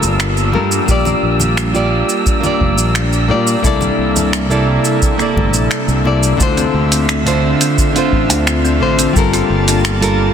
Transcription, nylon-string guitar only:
0.00 0.48 G3 medium
0.00 0.49 F4 medium
0.00 0.50 A4 medium
0.00 0.51 A#4 medium
0.52 0.83 G3 medium
0.52 0.84 F4 medium
0.52 0.84 A4 medium
0.52 0.85 A#4 medium
0.86 1.69 A#3 medium
0.86 1.70 F4 medium
0.86 1.71 G4 medium
0.91 1.72 D5 loud
1.73 2.39 A#3 medium
1.73 2.39 F4 medium
1.73 2.40 G4 medium
1.73 2.40 D5 medium
2.41 3.24 A#3 medium
2.41 3.25 F4 medium
2.41 3.26 G4 medium
2.46 3.27 D5 medium
3.28 3.59 A#3 medium
3.28 3.60 F4 medium
3.28 3.60 G4 medium
3.28 3.61 D5 medium
3.61 4.45 C3 medium
3.61 4.46 A#3 medium
3.61 4.46 E4 medium
3.61 4.47 A4 medium
3.67 4.48 D5 loud
4.49 5.15 C3 medium
4.49 5.15 A#3 medium
4.49 5.15 E4 medium
4.49 5.16 A4 medium
4.49 5.16 D5 medium
5.16 6.00 C3 medium
5.16 6.01 A#3 medium
5.16 6.01 E4 medium
5.21 6.02 A4 medium
5.21 6.03 D5 medium
6.04 6.35 C3 medium
6.04 6.36 A#3 medium
6.04 6.36 E4 medium
6.04 6.36 A4 medium
6.04 6.37 D5 medium
6.37 7.21 D3 medium
6.37 7.22 D4 medium
6.37 7.23 F4 medium
6.43 7.24 C5 loud
7.25 7.91 D3 medium
7.25 7.91 D4 medium
7.25 7.91 F4 medium
7.25 7.92 C5 medium
7.93 8.76 D3 medium
7.93 8.77 D4 medium
7.93 8.78 F4 medium
7.98 8.79 C5 medium
8.80 9.11 D3 medium
8.80 9.12 D4 medium
8.80 9.12 F4 medium
8.80 9.12 C5 medium
9.13 9.97 G3 medium
9.13 9.98 F4 medium
9.13 9.99 A4 medium
9.19 9.99 A#4 loud
10.01 10.34 G3 medium
10.01 10.34 F4 medium
10.01 10.34 A4 medium
10.01 10.34 A#4 medium

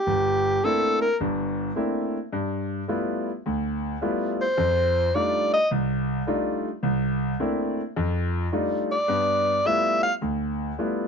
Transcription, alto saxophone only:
0.00 0.66 G4 medium
0.64 1.01 A4 medium
1.02 1.18 A#4 medium
4.41 5.17 C5 medium
5.15 5.53 D5 medium
5.54 5.70 D#5 loud
8.92 9.68 D5 medium
9.67 10.03 E5 loud
10.03 10.14 F5 medium

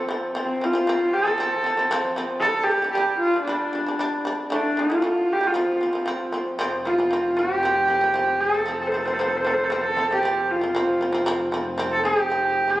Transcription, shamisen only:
0.09 0.30 F3 medium
0.09 0.31 C4 loud
0.35 0.56 F3 medium
0.35 0.57 C4 loud
0.61 0.72 F3 medium
0.61 0.73 C4 medium
0.73 0.84 F3 medium
0.73 0.85 C4 medium
0.87 1.19 F3 medium
0.87 1.20 C4 loud
1.26 1.36 F3 medium
1.26 1.37 C4 medium
1.38 1.59 F3 loud
1.38 1.60 C4 loud
1.64 1.75 F3 medium
1.64 1.76 C4 medium
1.77 1.88 F3 medium
1.77 1.89 C4 medium
1.91 2.12 F3 loud
1.91 2.13 C4 loud
2.16 2.38 F3 medium
2.16 2.38 C4 medium
2.42 2.63 G3 medium
2.42 2.65 D4 medium
2.69 2.80 G3 medium
2.69 2.81 D4 medium
2.82 2.93 G3 medium
2.82 2.94 D4 medium
2.95 3.26 G3 loud
2.95 3.27 D4 loud
3.34 3.44 G3 medium
3.34 3.45 D4 medium
3.47 3.68 G3 loud
3.47 3.69 D4 loud
3.73 3.83 G3 medium
3.73 3.84 D4 medium
3.86 3.96 G3 medium
3.86 3.97 D4 medium
3.99 4.20 G3 medium
3.99 4.20 D4 loud
4.25 4.46 G3 medium
4.25 4.46 D4 loud
4.50 4.71 D3 medium
4.50 4.72 A3 loud
4.77 4.87 D3 medium
4.77 4.88 A3 medium
4.90 5.00 D3 medium
4.90 5.01 A3 medium
5.02 5.33 D3 loud
5.02 5.34 A3 loud
5.41 5.52 D3 medium
5.41 5.53 A3 medium
5.54 5.75 F3 loud
5.54 5.76 C4 medium
5.81 5.91 F3 medium
5.81 5.92 C4 medium
5.93 6.04 F3 medium
5.93 6.05 C4 medium
6.06 6.27 F3 loud
6.06 6.28 C4 loud
6.32 6.53 F3 medium
6.32 6.54 C4 medium
6.59 6.79 F3 loud
6.59 6.80 C4 loud
6.85 6.95 F3 medium
6.85 6.96 C4 medium
6.98 7.08 F3 medium
6.98 7.09 C4 medium
7.11 7.31 F3 medium
7.11 7.32 C4 loud
7.37 7.57 F3 medium
7.37 7.58 C4 medium
7.63 7.83 F3 medium
7.63 7.84 C4 loud
7.88 7.99 F3 medium
7.88 7.99 C4 medium
8.01 8.12 F3 medium
8.01 8.13 C4 medium
8.14 8.45 F3 loud
8.14 8.46 C4 loud
8.53 8.63 F3 medium
8.53 8.64 C4 medium
8.66 8.87 F3 medium
8.66 8.88 C4 medium
8.92 9.03 F3 medium
8.92 9.04 C4 medium
9.05 9.16 F3 medium
9.05 9.17 C4 medium
9.19 9.39 F3 medium
9.19 9.41 C4 medium
9.45 9.65 F3 medium
9.45 9.66 C4 medium
9.70 9.91 F3 medium
9.70 9.92 C4 loud
9.97 10.07 F3 medium
9.97 10.08 C4 medium
10.11 10.20 F3 medium
10.11 10.21 C4 medium
10.23 10.54 F3 medium
10.23 10.55 C4 loud
10.61 10.72 F3 medium
10.61 10.73 C4 medium
10.75 10.95 F3 medium
10.75 10.96 C4 loud
11.01 11.11 F3 medium
11.01 11.12 C4 medium
11.13 11.23 F3 medium
11.13 11.24 C4 loud
11.26 11.47 F3 loud
11.26 11.48 C4 loud
11.52 11.73 F3 medium
11.52 11.74 C4 loud
11.78 11.99 F3 medium
11.78 12.00 C4 loud
12.04 12.15 F3 medium
12.04 12.15 C4 medium
12.16 12.28 F3 medium
12.16 12.29 C4 medium
12.30 12.62 F3 medium
12.30 12.62 C4 medium
12.68 12.79 F3 medium
12.68 12.80 C4 medium

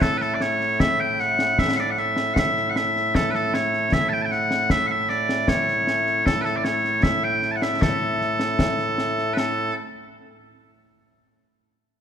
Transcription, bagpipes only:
0.00 9.74 A2 medium
0.00 9.74 A3 medium
0.00 9.74 E4 medium
0.00 0.17 A4 loud
0.17 0.34 A4 medium
0.17 0.21 B4 medium
0.34 0.41 D5 medium
0.41 0.80 C#5 loud
0.80 1.00 E5 medium
1.00 1.20 G5 loud
1.20 1.59 F#5 loud
1.59 1.76 E5 loud
1.76 1.90 D5 medium
1.76 1.80 F#5 medium
1.90 1.98 F#5 medium
1.98 2.34 E5 medium
2.34 2.38 F#5 loud
2.38 2.70 E5 loud
2.70 2.76 F#5 medium
2.76 3.15 E5 medium
3.15 3.30 A4 medium
3.30 3.35 B4 medium
3.35 3.54 A4 medium
3.54 3.93 C#5 medium
3.93 4.09 E5 medium
4.09 4.13 A5 medium
4.13 4.22 G5 medium
4.22 4.31 G5 medium
4.22 4.25 A5 medium
4.31 4.71 F#5 loud
4.71 4.87 E5 loud
4.87 5.09 E5 medium
4.87 4.91 F#5 medium
5.09 5.48 D5 medium
5.48 6.26 C#5 medium
6.26 6.41 A4 medium
6.41 6.56 A4 medium
6.41 6.44 B4 medium
6.56 6.64 D5 medium
6.64 7.03 C#5 medium
7.03 7.24 E5 medium
7.24 7.51 G5 medium
7.51 7.56 A5 medium
7.56 7.62 F#5 medium
7.62 7.82 E5 medium
7.82 9.33 A4 medium
9.33 9.38 B4 medium
9.38 9.74 A4 medium

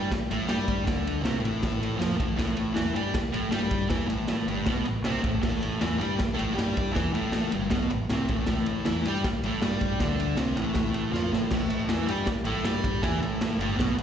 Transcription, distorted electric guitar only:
0.12 muted distorted electric guitar stroke medium
0.31 0.48 A2 medium
0.31 0.48 A3 loud
0.47 0.85 G3 medium
0.47 0.86 G4 loud
0.86 1.22 D3 loud
0.86 1.23 D4 loud
1.22 1.40 C3 medium
1.22 1.40 C4 medium
1.40 1.97 A2 medium
1.40 1.98 A3 loud
1.97 2.16 F3 medium
1.97 2.18 F4 loud
2.17 2.35 A2 medium
2.17 2.36 A3 loud
2.36 2.73 A2 loud
2.36 2.74 A3 loud
2.74 2.93 E3 loud
2.74 2.94 E4 loud
2.94 3.13 G3 medium
2.94 3.13 G4 medium
3.13 muted distorted electric guitar stroke medium
3.32 3.51 A2 medium
3.32 3.52 A3 loud
3.51 3.89 G3 loud
3.51 3.90 G4 loud
3.88 4.07 E3 loud
3.88 4.08 E4 loud
4.07 4.46 A2 medium
4.07 4.47 A3 loud
4.48 4.66 G2 medium
4.48 4.67 G3 loud
4.66 4.85 B2 medium
4.66 4.85 B3 loud
4.86 5.01 A2 medium
5.05 5.23 C3 loud
5.05 5.23 C4 medium
5.23 5.41 A2 medium
5.23 5.42 A3 loud
5.42 5.80 A2 medium
5.42 5.81 A3 loud
5.81 5.99 E3 medium
5.81 6.00 E4 loud
5.98 6.18 G3 medium
5.98 6.18 G4 loud
6.16 muted distorted electric guitar stroke medium
6.33 6.55 A2 medium
6.33 6.55 A3 loud
6.52 6.93 G3 medium
6.52 6.93 G4 loud
6.92 7.12 E3 loud
6.92 7.12 E4 loud
7.13 7.52 A2 loud
7.13 7.52 A3 loud
7.52 7.71 G2 medium
7.52 7.71 G3 loud
7.70 7.90 B2 loud
7.70 7.90 B3 loud
7.91 8.06 A2 medium
8.11 8.29 C3 medium
8.11 8.29 C4 loud
8.30 8.48 A2 loud
8.30 8.48 A3 loud
8.49 8.85 A2 loud
8.49 8.86 A3 loud
8.85 9.04 E3 medium
8.85 9.05 E4 loud
9.06 9.24 G3 medium
9.06 9.25 G4 loud
9.25 muted distorted electric guitar stroke medium
9.45 9.62 A2 medium
9.45 9.63 A3 loud
9.61 9.99 G3 loud
9.61 10.00 G4 loud
10.00 10.37 D3 loud
10.00 10.38 D4 loud
10.38 10.56 C3 medium
10.38 10.57 C4 loud
10.56 11.12 A2 medium
10.56 11.13 A3 medium
11.12 11.32 F3 medium
11.12 11.32 F4 loud
11.32 11.50 A2 medium
11.32 11.51 A3 loud
11.51 11.89 A2 medium
11.51 11.89 A3 loud
11.89 12.08 E3 medium
11.89 12.08 E4 loud
12.07 12.26 G3 medium
12.07 12.27 G4 loud
12.27 muted distorted electric guitar stroke medium
12.44 12.64 A2 loud
12.44 12.65 A3 loud
12.65 13.02 G3 medium
12.65 13.03 G4 loud
13.02 13.21 E3 medium
13.02 13.21 E4 loud
13.22 13.59 A2 medium
13.22 13.59 A3 medium
13.57 13.77 G2 medium
13.57 13.78 G3 loud
13.76 13.95 B2 loud
13.76 13.96 B3 loud
13.96 14.03 A2 medium

